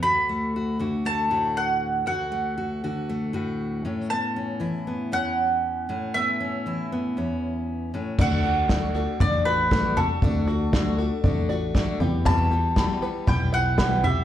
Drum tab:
CC |--------|--------|--------|--------|
SD |--------|--------|--------|--------|
FT |--------|--------|--------|--------|
BD |--------|--------|--------|--------|

CC |x-------|--------|--------|
SD |--o---o-|--o---o-|--o---o-|
FT |o---o--o|o---o--o|o---o--o|
BD |o-o-o-o-|o-o-o-o-|o-o-o-o-|